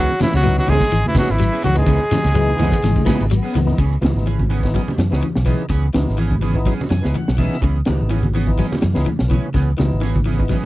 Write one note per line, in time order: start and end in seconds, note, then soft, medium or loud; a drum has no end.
0.00 0.13 C#3 loud
0.00 0.12 E3 medium
0.00 0.20 F#3 medium
0.00 0.10 B3 medium
0.00 0.12 B3 medium
0.00 0.12 C#4 medium
0.00 0.11 D#4 medium
0.00 0.20 F#4 loud
0.00 0.12 G#4 medium
0.20 0.37 E3 medium
0.20 0.33 E3 medium
0.20 0.34 E4 medium
0.20 muted fingered electric bass stroke soft
0.20 snare soft
0.20 ride bell medium
0.20 high conga loud
0.20 shekere loud
0.32 0.60 C#2 loud
0.32 0.56 F#3 medium
0.32 0.47 B3 soft
0.32 0.47 C#4 soft
0.32 0.57 F#4 medium
0.32 muted clean electric guitar stroke medium
0.32 snare soft
0.32 ride bell medium
0.32 high conga medium
0.32 shekere soft
0.43 0.73 E3 medium
0.43 0.61 F#3 medium
0.43 0.74 B3 medium
0.43 0.74 D#4 medium
0.43 ride bell medium
0.43 shekere loud
0.58 0.70 F#3 medium
0.58 0.71 F#4 loud
0.58 high conga medium
0.66 0.78 C#2 loud
0.66 0.83 E3 medium
0.66 0.85 E3 medium
0.66 1.05 G#3 loud
0.66 0.83 B3 medium
0.66 0.83 C#4 medium
0.66 0.83 G#4 medium
0.66 1.06 G#4 loud
0.66 open hi-hat medium
0.66 high conga medium
0.66 low conga medium
0.71 shekere soft
0.81 kick medium
0.81 ride bell medium
0.81 shekere medium
0.91 1.02 G#1 loud
0.91 1.09 E3 medium
0.91 ride bell medium
0.91 shekere medium
1.06 1.16 E3 medium
1.06 1.17 E4 medium
1.06 high conga medium
1.15 1.31 E3 medium
1.15 1.36 E3 medium
1.15 1.32 F#3 medium
1.15 1.31 B3 medium
1.15 1.36 B3 medium
1.15 1.31 C#4 medium
1.15 1.36 D#4 medium
1.15 1.33 F#4 loud
1.15 1.32 G#4 medium
1.15 muted fingered electric bass stroke soft
1.15 muted clean electric guitar stroke medium
1.15 kick medium
1.15 snare soft
1.15 ride bell medium
1.15 high conga loud
1.15 shekere medium
1.28 1.48 G#1 medium
1.28 1.64 E3 medium
1.28 1.64 E4 medium
1.28 snare soft
1.28 ride bell soft
1.28 shekere soft
1.39 1.56 F#3 medium
1.39 ride bell medium
1.39 shekere medium
1.52 1.67 B3 soft
1.52 1.66 C#4 soft
1.52 1.66 G#4 medium
1.62 1.82 C#2 medium
1.62 1.81 E3 medium
1.62 1.77 F#3 medium
1.62 1.69 B3 medium
1.62 1.69 C#4 medium
1.62 1.76 F#4 loud
1.62 ride bell medium
1.62 low conga medium
1.62 shekere medium
1.74 2.00 E3 medium
1.74 3.28 G#3 medium
1.74 2.00 B3 medium
1.74 2.00 D#4 medium
1.74 ride bell medium
1.78 3.28 G#4 loud
1.78 low conga medium
1.78 shekere soft
1.86 1.97 C#2 loud
1.86 2.05 C#3 loud
1.86 2.03 E3 medium
1.86 2.03 B3 medium
1.86 2.03 C#4 medium
1.86 2.03 G#4 medium
1.86 kick loud
1.86 ride bell medium
1.86 shekere medium
2.11 2.28 E3 medium
2.11 muted fingered electric bass stroke soft
2.11 snare soft
2.11 ride bell medium
2.11 high conga loud
2.11 shekere medium
2.24 2.51 C#2 medium
2.24 2.39 B3 soft
2.24 2.38 C#4 medium
2.24 2.38 G#4 medium
2.24 snare soft
2.24 ride bell medium
2.24 shekere soft
2.34 2.64 E3 loud
2.34 2.52 F#3 medium
2.34 2.57 G#3 medium
2.34 2.64 B3 medium
2.34 2.65 D#4 loud
2.34 ride bell soft
2.34 shekere loud
2.48 high conga medium
2.59 2.69 C#2 loud
2.59 2.74 E3 medium
2.59 2.76 E3 medium
2.59 2.74 B3 medium
2.59 2.82 B3 loud
2.59 2.75 C#4 medium
2.59 2.75 G#4 medium
2.59 open hi-hat medium
2.59 high conga medium
2.59 low conga medium
2.59 shekere soft
2.72 kick medium
2.72 ride bell medium
2.72 shekere medium
2.83 2.94 G#1 medium
2.83 3.00 E3 medium
2.83 3.06 G#3 loud
2.83 snare soft
2.83 ride bell medium
2.83 high conga medium
2.83 shekere medium
2.96 kick medium
2.96 high conga medium
3.05 3.26 E3 medium
3.05 3.22 E3 medium
3.05 3.23 G#3 medium
3.05 3.18 G#3 medium
3.05 3.26 B3 medium
3.05 3.22 B3 medium
3.05 3.22 C#4 medium
3.05 3.27 D#4 loud
3.05 3.23 G#4 medium
3.05 muted fingered electric bass stroke soft
3.05 kick medium
3.05 snare soft
3.05 ride bell medium
3.05 high conga loud
3.05 shekere loud
3.20 3.39 G#1 medium
3.20 ride bell medium
3.20 shekere soft
3.31 3.48 F#3 medium
3.31 3.76 B3 medium
3.31 ride bell medium
3.31 shekere medium
3.43 3.58 B3 medium
3.43 3.58 C#4 medium
3.43 3.57 G#4 medium
3.53 3.73 C#2 medium
3.53 3.72 E3 medium
3.53 3.59 B3 loud
3.53 3.61 D#4 loud
3.53 open hi-hat medium
3.53 low conga medium
3.53 shekere medium
3.66 3.78 E3 medium
3.66 3.78 B3 medium
3.66 3.79 D#4 loud
3.66 low conga medium
3.66 shekere soft
3.78 3.97 C#2 medium
3.78 3.96 C#3 medium
3.78 3.94 E3 soft
3.78 3.95 B3 medium
3.78 3.95 C#4 medium
3.78 3.95 G#4 medium
3.78 kick medium
3.78 closed hi-hat medium
3.78 high conga soft
3.93 closed hi-hat soft
4.01 4.12 C#2 medium
4.01 4.20 D#3 medium
4.01 4.26 E3 medium
4.01 4.26 B3 medium
4.01 4.27 D#4 medium
4.01 snare medium
4.01 closed hi-hat soft
4.01 high conga medium
4.14 4.78 G#1 medium
4.14 snare soft
4.14 high conga medium
4.26 4.42 E3 medium
4.26 4.44 E3 medium
4.26 4.42 C#4 medium
4.26 4.42 G#4 medium
4.26 muted clean electric guitar stroke medium
4.26 closed hi-hat medium
4.26 high conga soft
4.40 kick medium
4.40 closed hi-hat soft
4.40 high conga medium
4.49 4.66 E3 medium
4.49 4.68 E3 medium
4.49 4.66 B3 medium
4.49 4.66 C#4 medium
4.49 4.66 G#4 medium
4.49 open hi-hat medium
4.63 4.82 E3 medium
4.63 4.82 B3 medium
4.63 4.83 D#4 medium
4.63 kick medium
4.63 snare soft
4.74 4.90 E3 medium
4.74 4.92 F#3 medium
4.74 4.90 B3 medium
4.74 4.90 C#4 medium
4.74 4.90 G#4 medium
4.74 kick medium
4.74 closed hi-hat medium
4.74 high conga soft
4.88 high conga medium
4.98 5.08 F#2 medium
4.98 5.16 E3 medium
4.98 snare medium
4.98 closed hi-hat soft
5.11 5.20 C#2 medium
5.11 5.25 E3 medium
5.11 5.25 B3 medium
5.11 5.26 B3 soft
5.11 5.26 C#4 soft
5.11 5.26 D#4 loud
5.11 5.25 G#4 medium
5.11 snare medium
5.11 closed hi-hat soft
5.21 5.39 E3 medium
5.21 closed hi-hat medium
5.21 high conga medium
5.35 5.54 B1 medium
5.35 snare medium
5.45 5.66 E3 medium
5.45 5.62 E3 medium
5.45 5.63 E3 medium
5.45 5.66 B3 medium
5.45 5.62 B3 medium
5.45 5.62 C#4 medium
5.45 5.67 D#4 medium
5.45 5.62 G#4 medium
5.45 kick medium
5.45 closed hi-hat soft
5.45 high conga medium
5.69 5.88 C#2 medium
5.69 5.85 E3 medium
5.69 5.86 B3 medium
5.69 5.86 C#4 medium
5.69 5.86 G#4 medium
5.69 muted clean electric guitar stroke medium
5.69 kick medium
5.69 closed hi-hat medium
5.69 high conga soft
5.93 6.05 C#2 medium
5.93 6.11 D#3 medium
5.93 6.18 E3 medium
5.93 6.19 B3 medium
5.93 6.19 D#4 medium
5.93 snare medium
5.93 closed hi-hat soft
5.93 high conga medium
6.07 6.71 G#1 medium
6.07 snare soft
6.07 closed hi-hat soft
6.17 6.35 E3 medium
6.17 6.34 E3 medium
6.17 6.34 B3 medium
6.17 6.34 C#4 medium
6.17 6.34 G#4 medium
6.17 closed hi-hat medium
6.17 high conga soft
6.31 kick medium
6.31 closed hi-hat soft
6.31 high conga medium
6.41 6.58 E3 medium
6.41 6.59 E3 medium
6.41 6.58 B3 medium
6.41 6.58 C#4 medium
6.41 6.58 G#4 medium
6.41 open hi-hat medium
6.55 6.74 E3 medium
6.55 6.74 B3 medium
6.55 6.75 D#4 medium
6.55 kick medium
6.65 6.81 E3 medium
6.65 6.83 F#3 medium
6.65 6.82 B3 medium
6.65 6.82 C#4 medium
6.65 6.82 G#4 medium
6.65 kick medium
6.65 closed hi-hat medium
6.65 high conga soft
6.81 high conga medium
6.90 7.01 F#2 medium
6.90 7.07 E3 medium
6.90 7.13 G#5 medium
6.90 snare medium
6.90 closed hi-hat soft
7.02 7.13 C#2 medium
7.02 7.16 E3 medium
7.02 7.16 B3 medium
7.02 7.17 B3 soft
7.02 7.17 C#4 soft
7.02 7.17 D#4 medium
7.02 7.17 G#4 medium
7.02 snare medium
7.02 closed hi-hat soft
7.14 7.32 E3 medium
7.14 7.37 F#5 medium
7.14 closed hi-hat medium
7.14 high conga medium
7.28 7.46 B1 medium
7.28 snare medium
7.37 7.57 E3 medium
7.37 7.54 E3 medium
7.37 7.55 E3 medium
7.37 7.58 B3 medium
7.37 7.54 B3 medium
7.37 7.54 C#4 medium
7.37 7.58 D#4 medium
7.37 7.54 G#4 medium
7.37 7.61 E5 medium
7.37 kick medium
7.37 closed hi-hat medium
7.37 high conga medium
7.52 snare soft
7.52 closed hi-hat soft
7.61 7.81 C#2 medium
7.61 7.80 C#3 medium
7.61 7.77 E3 soft
7.61 7.78 B3 medium
7.61 7.78 C#4 medium
7.61 7.78 G#4 medium
7.61 kick medium
7.61 closed hi-hat medium
7.75 closed hi-hat soft
7.85 7.98 C#2 medium
7.85 8.03 D#3 medium
7.85 8.10 E3 medium
7.85 8.11 B3 medium
7.85 8.11 D#4 medium
7.85 snare medium
7.85 closed hi-hat soft
7.85 high conga medium
8.01 8.63 G#1 medium
8.09 8.25 E3 medium
8.09 8.27 E3 medium
8.09 8.25 B3 medium
8.09 8.26 C#4 medium
8.09 8.26 G#4 medium
8.09 closed hi-hat medium
8.09 high conga soft
8.23 kick medium
8.23 closed hi-hat soft
8.23 high conga medium
8.33 8.52 E3 medium
8.33 8.50 B3 medium
8.33 8.50 C#4 medium
8.33 8.50 G#4 medium
8.33 muted clean electric guitar stroke medium
8.33 open hi-hat medium
8.47 8.66 E3 medium
8.47 8.67 B3 medium
8.47 8.67 D#4 medium
8.47 kick medium
8.57 8.74 E3 medium
8.57 8.75 F#3 medium
8.57 8.74 B3 medium
8.57 8.74 C#4 medium
8.57 8.74 G#4 medium
8.57 kick medium
8.57 closed hi-hat medium
8.57 high conga soft
8.72 snare soft
8.72 high conga medium
8.81 8.93 F#2 medium
8.81 8.99 E3 medium
8.81 snare medium
8.81 closed hi-hat soft
8.94 9.04 C#2 medium
8.94 9.08 E3 medium
8.94 9.09 B3 medium
8.94 9.10 B3 soft
8.94 9.10 C#4 soft
8.94 9.09 D#4 loud
8.94 9.09 G#4 medium
8.94 snare medium
8.94 closed hi-hat soft
9.05 9.23 E3 medium
9.05 closed hi-hat medium
9.05 high conga medium
9.19 9.39 B1 medium
9.19 snare medium
9.28 9.49 E3 medium
9.28 9.46 E3 medium
9.28 9.47 E3 medium
9.28 9.49 B3 medium
9.28 9.46 B3 medium
9.28 9.50 C#4 medium
9.28 9.46 C#4 medium
9.28 9.47 G#4 medium
9.28 kick medium
9.28 closed hi-hat soft
9.28 high conga medium
9.54 9.73 C#2 medium
9.54 9.71 C#3 medium
9.54 9.70 E3 medium
9.54 9.70 B3 medium
9.54 9.70 C#4 medium
9.54 9.70 G#4 medium
9.54 kick medium
9.54 snare soft
9.54 closed hi-hat medium
9.54 high conga soft
9.77 9.89 C#2 medium
9.77 9.95 D#3 medium
9.77 10.02 E3 medium
9.77 10.02 B3 medium
9.77 10.03 D#4 medium
9.77 snare medium
9.77 closed hi-hat soft
9.77 high conga medium
9.92 10.55 G#1 medium
9.92 closed hi-hat soft
10.01 10.17 E3 medium
10.01 10.18 E3 medium
10.01 10.17 B3 medium
10.01 10.18 C#4 medium
10.01 10.18 G#4 medium
10.01 snare soft
10.01 closed hi-hat medium
10.01 high conga soft
10.16 kick medium
10.16 closed hi-hat soft
10.16 high conga medium
10.26 10.42 E3 medium
10.26 10.43 E3 medium
10.26 10.42 B3 medium
10.26 10.42 C#4 medium
10.26 10.42 G#4 medium
10.26 open hi-hat medium
10.38 10.58 E3 medium
10.38 10.58 B3 medium
10.38 10.58 D#4 medium
10.38 kick medium
10.49 10.65 E3 medium
10.49 10.65 F#3 medium
10.49 10.65 B3 medium
10.49 10.65 C#4 medium
10.49 10.65 G#4 medium
10.49 kick medium
10.49 closed hi-hat medium
10.49 high conga soft